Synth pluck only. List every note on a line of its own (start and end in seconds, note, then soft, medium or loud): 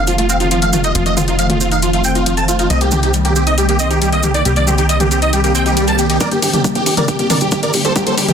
0.07 0.12 F3 medium
0.18 0.25 A3 medium
0.29 0.36 C4 loud
0.40 0.47 D#4 medium
0.51 0.58 F3 medium
0.62 0.69 A3 medium
0.73 0.80 A3 medium
0.84 0.88 D#4 medium
0.95 0.99 F3 medium
1.06 1.13 A3 medium
1.17 1.27 C4 medium
1.28 1.35 D#4 medium
1.39 1.46 F3 medium
1.50 1.54 A3 medium
1.61 1.68 C4 medium
1.72 1.76 D#4 medium
1.83 1.87 F3 medium
1.94 2.01 A3 medium
2.05 2.12 C4 loud
2.15 2.22 D#4 medium
2.26 2.33 F3 medium
2.37 2.44 A3 medium
2.48 2.55 A3 medium
2.59 2.63 D#4 medium
2.70 2.74 G3 medium
2.81 2.88 A#3 medium
2.92 3.03 C4 medium
3.03 3.10 D#4 medium
3.14 3.21 G3 medium
3.25 3.29 A#3 medium
3.36 3.43 C4 medium
3.47 3.51 D#4 medium
3.58 3.62 G3 medium
3.69 3.76 A#3 medium
3.80 3.87 C4 loud
3.91 3.98 D#4 medium
4.02 4.09 G3 medium
4.13 4.20 A#3 medium
4.24 4.31 A#3 medium
4.35 4.39 D#4 medium
4.46 4.50 G3 medium
4.57 4.63 A#3 medium
4.67 4.78 C4 medium
4.78 4.85 D#4 medium
4.89 4.96 G3 medium
5.00 5.04 A#3 medium
5.11 5.18 C4 medium
5.22 5.26 D#4 medium
5.33 5.37 G3 medium
5.44 5.51 A#3 medium
5.55 5.62 C4 loud
5.66 5.73 D#4 medium
5.77 5.84 G3 medium
5.88 5.95 A#3 medium
5.99 6.06 A#3 medium
6.10 6.14 D#4 medium
6.21 6.25 G3 medium
6.32 6.39 A#3 medium
6.43 6.53 D4 medium
6.54 6.60 G4 medium
6.64 6.71 G3 medium
6.75 6.80 A#3 medium
6.86 6.93 D4 medium
6.97 7.01 G4 medium
7.08 7.12 G3 medium
7.19 7.26 A#3 medium
7.30 7.37 D4 loud
7.41 7.48 G4 medium
7.52 7.59 G3 medium
7.63 7.70 A#3 medium
7.74 7.81 A#3 medium
7.85 7.89 G4 medium
7.96 8.00 G3 medium
8.07 8.14 A#3 medium
8.18 8.28 D4 medium
8.29 8.33 G4 medium